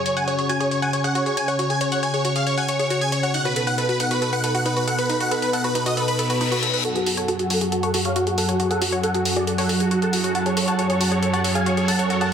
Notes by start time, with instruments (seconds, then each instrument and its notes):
Already playing: analog synth pad C#3 C#4 F#4 G#4
0.06 supersaw synth C#5, synth arpeggio sound C#5, closed hi-hat
0.17 synth arpeggio sound F#5, supersaw synth G#5, closed hi-hat
0.28 supersaw synth C#5, synth arpeggio sound C#5, closed hi-hat
0.38 synth arpeggio sound G#4, supersaw synth C#5, closed hi-hat
0.49 synth arpeggio sound F#4, supersaw synth G#5, closed hi-hat
0.60 synth arpeggio sound G#4, supersaw synth C#5, closed hi-hat
0.71 supersaw synth C#5, synth arpeggio sound C#5, closed hi-hat
0.82 synth arpeggio sound F#5, supersaw synth G#5, closed hi-hat
0.93 supersaw synth C#5, synth arpeggio sound C#5, closed hi-hat
1.04 synth arpeggio sound G#4, supersaw synth F#5, closed hi-hat
1.15 synth arpeggio sound F#4, supersaw synth C#5, closed hi-hat
1.26 synth arpeggio sound G#4, supersaw synth C#5, closed hi-hat
1.37 synth arpeggio sound C#5, supersaw synth G#5, closed hi-hat
1.48 supersaw synth C#5, synth arpeggio sound F#5, closed hi-hat
1.59 synth arpeggio sound F#4, supersaw synth C#5, closed hi-hat
1.70 synth arpeggio sound G#4, supersaw synth G#5, closed hi-hat
1.81 supersaw synth C#5, synth arpeggio sound C#5, closed hi-hat
1.92 supersaw synth C#5, synth arpeggio sound F#5, closed hi-hat
2.03 synth arpeggio sound C#5, supersaw synth G#5, closed hi-hat
2.14 synth arpeggio sound G#4, supersaw synth C#5, closed hi-hat
2.25 synth arpeggio sound F#4, supersaw synth C#5, closed hi-hat
2.36 synth arpeggio sound G#4, supersaw synth F5, closed hi-hat
2.47 synth arpeggio sound C#5, supersaw synth C#5, closed hi-hat
2.58 synth arpeggio sound F#5, supersaw synth G#5, closed hi-hat
2.68 synth arpeggio sound C#5, supersaw synth C#5, closed hi-hat
2.79 synth arpeggio sound G#4, supersaw synth C#5, closed hi-hat
2.90 synth arpeggio sound F#4, supersaw synth C#5, closed hi-hat
3.01 synth arpeggio sound G#4, supersaw synth G#5, closed hi-hat
3.12 synth arpeggio sound C#5, supersaw synth C#5, closed hi-hat
3.23 supersaw synth C#5, synth arpeggio sound F#5, closed hi-hat
3.34 analog synth pad B2 B3 D#4 A4, synth arpeggio sound D#4, supersaw synth F#5, closed hi-hat
3.45 synth arpeggio sound F#4, supersaw synth B4, closed hi-hat
3.56 synth arpeggio sound A4, supersaw synth B4, closed hi-hat
3.67 synth arpeggio sound B4, supersaw synth F#5, closed hi-hat
3.78 synth arpeggio sound A4, supersaw synth B4, closed hi-hat
3.89 synth arpeggio sound F#4, supersaw synth B4, closed hi-hat
4.00 synth arpeggio sound D#4, supersaw synth F#5, closed hi-hat
4.11 synth arpeggio sound F#4, supersaw synth B4, closed hi-hat
4.22 synth arpeggio sound A4, supersaw synth B4, closed hi-hat
4.33 synth arpeggio sound B4, supersaw synth F#5, closed hi-hat
4.44 synth arpeggio sound A4, supersaw synth B4, closed hi-hat
4.55 synth arpeggio sound F#4, supersaw synth F#5, closed hi-hat
4.66 synth arpeggio sound D#4, supersaw synth B4, closed hi-hat
4.77 synth arpeggio sound F#4, supersaw synth B4, closed hi-hat
4.88 synth arpeggio sound A4, supersaw synth F#5, closed hi-hat
4.98 synth arpeggio sound B4, supersaw synth B4, closed hi-hat
5.09 synth arpeggio sound D#4, supersaw synth B4, closed hi-hat
5.20 synth arpeggio sound F#4, supersaw synth F#5, closed hi-hat
5.31 synth arpeggio sound A4, supersaw synth B4, closed hi-hat
5.42 synth arpeggio sound B4, supersaw synth B4, closed hi-hat
5.53 synth arpeggio sound A4, supersaw synth F#5, closed hi-hat
5.64 synth arpeggio sound F#4, supersaw synth B4, closed hi-hat
5.75 synth arpeggio sound D#4, supersaw synth B4, closed hi-hat
5.86 synth arpeggio sound F#4, supersaw synth D#5, closed hi-hat
5.97 synth arpeggio sound A4, supersaw synth B4, closed hi-hat, reverse cymbal
6.08 synth arpeggio sound B4, supersaw synth B4, closed hi-hat
6.19 synth arpeggio sound A4, supersaw synth B4, closed hi-hat
6.30 synth arpeggio sound F#4, supersaw synth B4, closed hi-hat
6.41 synth arpeggio sound D#4, supersaw synth B4, closed hi-hat
6.52 synth arpeggio sound F#4, supersaw synth B4, closed hi-hat
6.63 synth arpeggio sound A4, supersaw synth B4, closed hi-hat
6.74 synth arpeggio sound B4, supersaw synth B4, closed hi-hat
6.85 analog synth pad F#2 F#3 G#4 A4, synth arpeggio sound F#4, supersaw synth A4 F#5, closed hi-hat, riser
6.95 supersaw synth F#4, synth arpeggio sound G#4, closed hi-hat
7.06 supersaw synth F#4, synth arpeggio sound A4, open hi-hat
7.17 supersaw synth A4 F#5, synth arpeggio sound C#5, closed hi-hat
7.28 supersaw synth F#4, synth arpeggio sound A4, closed hi-hat
7.39 supersaw synth F#4, synth arpeggio sound G#4, closed hi-hat
7.50 synth arpeggio sound F#4, supersaw synth A4 F#5, open hi-hat
7.61 supersaw synth F#4, synth arpeggio sound G#4, closed hi-hat
7.72 supersaw synth F#4, synth arpeggio sound A4, closed hi-hat
7.83 supersaw synth A4 F#5, synth arpeggio sound C#5, closed hi-hat
7.94 supersaw synth F#4, synth arpeggio sound A4, open hi-hat
8.05 synth arpeggio sound G#4, supersaw synth C#5 F5, closed hi-hat
8.16 synth arpeggio sound F#4, supersaw synth F#4, closed hi-hat
8.27 supersaw synth F#4, synth arpeggio sound G#4, closed hi-hat
8.38 synth arpeggio sound A4, supersaw synth A4 F#5, open hi-hat
8.49 supersaw synth F#4, synth arpeggio sound C#5, closed hi-hat
8.60 synth arpeggio sound F#4, supersaw synth F#4, closed hi-hat
8.71 synth arpeggio sound G#4, supersaw synth A4 F#5, closed hi-hat
8.82 supersaw synth F#4, synth arpeggio sound A4, open hi-hat
8.92 supersaw synth F#4, synth arpeggio sound C#5, closed hi-hat
9.03 synth arpeggio sound A4, supersaw synth A4 F#5, closed hi-hat
9.14 supersaw synth F#4, synth arpeggio sound G#4, closed hi-hat
9.25 synth arpeggio sound F#4, supersaw synth F#4, open hi-hat
9.36 supersaw synth F#4 D5, synth arpeggio sound G#4, closed hi-hat
9.47 supersaw synth F#4, synth arpeggio sound A4, closed hi-hat
9.58 supersaw synth A4 F#5, synth arpeggio sound C#5, open hi-hat
9.69 supersaw synth F#4, synth arpeggio sound A4, open hi-hat
9.80 supersaw synth F#4, synth arpeggio sound G#4, closed hi-hat
9.91 synth arpeggio sound F#4, supersaw synth F#4, closed hi-hat
10.02 synth arpeggio sound G#4, supersaw synth A4 F#5, closed hi-hat
10.13 supersaw synth F#4, synth arpeggio sound A4, open hi-hat
10.24 supersaw synth F#4, synth arpeggio sound C#5, closed hi-hat
10.35 synth arpeggio sound F#4, supersaw synth F#5 A5, closed hi-hat
10.46 synth arpeggio sound G#4, supersaw synth C#5, closed hi-hat
10.57 synth arpeggio sound A4, supersaw synth C#5, open hi-hat
10.68 synth arpeggio sound C#5, supersaw synth F#5 A5, closed hi-hat
10.79 synth arpeggio sound A4, supersaw synth C#5, closed hi-hat
10.90 synth arpeggio sound G#4, supersaw synth C#5, closed hi-hat
11.01 synth arpeggio sound F#4, supersaw synth F#5 A5, open hi-hat
11.11 synth arpeggio sound G#4, supersaw synth C#5, closed hi-hat
11.22 synth arpeggio sound A4, supersaw synth C#5, closed hi-hat
11.33 synth arpeggio sound C#5, supersaw synth F#5 A5, closed hi-hat
11.44 synth arpeggio sound A4, supersaw synth C#5, open hi-hat
11.55 synth arpeggio sound G#4, supersaw synth F5 G#5, closed hi-hat
11.66 synth arpeggio sound F#4, supersaw synth C#5, closed hi-hat
11.77 synth arpeggio sound G#4, supersaw synth C#5, closed hi-hat
11.88 synth arpeggio sound A4, supersaw synth F#5 A5, open hi-hat
11.99 supersaw synth C#5, synth arpeggio sound C#5, closed hi-hat
12.10 synth arpeggio sound F#4, supersaw synth C#5, closed hi-hat
12.21 synth arpeggio sound G#4, supersaw synth F#5 A5, closed hi-hat